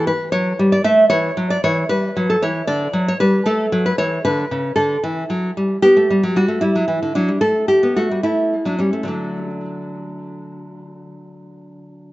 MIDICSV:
0, 0, Header, 1, 2, 480
1, 0, Start_track
1, 0, Key_signature, 2, "major"
1, 0, Tempo, 526316
1, 2449, Time_signature, 12, 3, 24, 8
1, 7260, Tempo, 567108
1, 10787, End_track
2, 0, Start_track
2, 0, Title_t, "Nylon-string guitar"
2, 0, Program_c, 0, 24
2, 0, Note_on_c, 0, 52, 93
2, 65, Note_on_c, 0, 71, 110
2, 106, Note_off_c, 0, 52, 0
2, 288, Note_off_c, 0, 71, 0
2, 292, Note_on_c, 0, 73, 104
2, 296, Note_on_c, 0, 54, 85
2, 472, Note_off_c, 0, 54, 0
2, 541, Note_on_c, 0, 55, 89
2, 643, Note_off_c, 0, 73, 0
2, 659, Note_on_c, 0, 74, 102
2, 713, Note_off_c, 0, 55, 0
2, 767, Note_off_c, 0, 74, 0
2, 768, Note_on_c, 0, 57, 80
2, 770, Note_on_c, 0, 76, 112
2, 944, Note_off_c, 0, 57, 0
2, 996, Note_off_c, 0, 76, 0
2, 1000, Note_on_c, 0, 73, 121
2, 1005, Note_on_c, 0, 52, 91
2, 1182, Note_off_c, 0, 52, 0
2, 1249, Note_on_c, 0, 54, 81
2, 1355, Note_off_c, 0, 73, 0
2, 1371, Note_on_c, 0, 74, 93
2, 1427, Note_off_c, 0, 54, 0
2, 1491, Note_off_c, 0, 74, 0
2, 1493, Note_on_c, 0, 52, 88
2, 1494, Note_on_c, 0, 73, 111
2, 1670, Note_off_c, 0, 52, 0
2, 1723, Note_off_c, 0, 73, 0
2, 1727, Note_on_c, 0, 71, 102
2, 1733, Note_on_c, 0, 55, 82
2, 1907, Note_off_c, 0, 55, 0
2, 1975, Note_on_c, 0, 54, 86
2, 2074, Note_off_c, 0, 71, 0
2, 2094, Note_on_c, 0, 69, 103
2, 2145, Note_off_c, 0, 54, 0
2, 2211, Note_on_c, 0, 73, 99
2, 2212, Note_off_c, 0, 69, 0
2, 2215, Note_on_c, 0, 52, 79
2, 2384, Note_off_c, 0, 52, 0
2, 2435, Note_off_c, 0, 73, 0
2, 2439, Note_on_c, 0, 74, 111
2, 2443, Note_on_c, 0, 50, 90
2, 2616, Note_off_c, 0, 50, 0
2, 2675, Note_on_c, 0, 54, 83
2, 2787, Note_off_c, 0, 74, 0
2, 2812, Note_on_c, 0, 73, 104
2, 2852, Note_off_c, 0, 54, 0
2, 2915, Note_off_c, 0, 73, 0
2, 2919, Note_on_c, 0, 71, 104
2, 2925, Note_on_c, 0, 55, 87
2, 3098, Note_off_c, 0, 55, 0
2, 3152, Note_on_c, 0, 57, 87
2, 3153, Note_off_c, 0, 71, 0
2, 3158, Note_on_c, 0, 69, 103
2, 3330, Note_off_c, 0, 57, 0
2, 3395, Note_on_c, 0, 54, 92
2, 3503, Note_off_c, 0, 69, 0
2, 3518, Note_on_c, 0, 71, 96
2, 3569, Note_off_c, 0, 54, 0
2, 3628, Note_off_c, 0, 71, 0
2, 3631, Note_on_c, 0, 73, 105
2, 3637, Note_on_c, 0, 52, 80
2, 3811, Note_off_c, 0, 52, 0
2, 3866, Note_off_c, 0, 73, 0
2, 3873, Note_on_c, 0, 50, 83
2, 3873, Note_on_c, 0, 71, 108
2, 4050, Note_off_c, 0, 50, 0
2, 4116, Note_on_c, 0, 49, 76
2, 4291, Note_off_c, 0, 49, 0
2, 4334, Note_off_c, 0, 71, 0
2, 4338, Note_on_c, 0, 69, 90
2, 4348, Note_on_c, 0, 50, 86
2, 4526, Note_off_c, 0, 50, 0
2, 4580, Note_off_c, 0, 69, 0
2, 4592, Note_on_c, 0, 52, 84
2, 4770, Note_off_c, 0, 52, 0
2, 4832, Note_on_c, 0, 54, 75
2, 5013, Note_off_c, 0, 54, 0
2, 5081, Note_on_c, 0, 55, 71
2, 5258, Note_off_c, 0, 55, 0
2, 5311, Note_on_c, 0, 67, 106
2, 5316, Note_on_c, 0, 59, 80
2, 5438, Note_off_c, 0, 59, 0
2, 5441, Note_on_c, 0, 57, 68
2, 5560, Note_off_c, 0, 57, 0
2, 5567, Note_on_c, 0, 55, 75
2, 5683, Note_off_c, 0, 55, 0
2, 5685, Note_on_c, 0, 54, 78
2, 5782, Note_off_c, 0, 67, 0
2, 5802, Note_off_c, 0, 54, 0
2, 5802, Note_on_c, 0, 55, 74
2, 5808, Note_on_c, 0, 66, 99
2, 5909, Note_off_c, 0, 55, 0
2, 5913, Note_on_c, 0, 57, 73
2, 6028, Note_on_c, 0, 64, 93
2, 6034, Note_off_c, 0, 57, 0
2, 6037, Note_on_c, 0, 55, 74
2, 6038, Note_off_c, 0, 66, 0
2, 6159, Note_off_c, 0, 55, 0
2, 6160, Note_on_c, 0, 54, 70
2, 6269, Note_off_c, 0, 54, 0
2, 6272, Note_on_c, 0, 52, 76
2, 6395, Note_off_c, 0, 52, 0
2, 6407, Note_on_c, 0, 50, 66
2, 6500, Note_off_c, 0, 64, 0
2, 6522, Note_on_c, 0, 62, 83
2, 6523, Note_off_c, 0, 50, 0
2, 6528, Note_on_c, 0, 54, 74
2, 6643, Note_on_c, 0, 55, 60
2, 6644, Note_off_c, 0, 54, 0
2, 6754, Note_off_c, 0, 55, 0
2, 6757, Note_off_c, 0, 62, 0
2, 6757, Note_on_c, 0, 57, 76
2, 6757, Note_on_c, 0, 69, 95
2, 6997, Note_off_c, 0, 69, 0
2, 7005, Note_on_c, 0, 67, 84
2, 7026, Note_off_c, 0, 57, 0
2, 7141, Note_on_c, 0, 59, 70
2, 7246, Note_off_c, 0, 67, 0
2, 7257, Note_off_c, 0, 59, 0
2, 7263, Note_on_c, 0, 66, 84
2, 7267, Note_on_c, 0, 57, 69
2, 7375, Note_off_c, 0, 57, 0
2, 7390, Note_on_c, 0, 55, 66
2, 7487, Note_off_c, 0, 66, 0
2, 7491, Note_on_c, 0, 64, 85
2, 7494, Note_off_c, 0, 55, 0
2, 7497, Note_on_c, 0, 57, 67
2, 7753, Note_off_c, 0, 57, 0
2, 7835, Note_off_c, 0, 64, 0
2, 7846, Note_on_c, 0, 54, 66
2, 7853, Note_on_c, 0, 62, 73
2, 7955, Note_off_c, 0, 62, 0
2, 7958, Note_on_c, 0, 61, 72
2, 7963, Note_off_c, 0, 54, 0
2, 7968, Note_on_c, 0, 55, 62
2, 8076, Note_off_c, 0, 55, 0
2, 8080, Note_on_c, 0, 57, 64
2, 8167, Note_on_c, 0, 50, 59
2, 8182, Note_on_c, 0, 54, 48
2, 8189, Note_off_c, 0, 57, 0
2, 8199, Note_on_c, 0, 57, 48
2, 8200, Note_off_c, 0, 61, 0
2, 8206, Note_on_c, 0, 62, 68
2, 10346, Note_off_c, 0, 62, 0
2, 10787, Note_off_c, 0, 50, 0
2, 10787, Note_off_c, 0, 54, 0
2, 10787, Note_off_c, 0, 57, 0
2, 10787, End_track
0, 0, End_of_file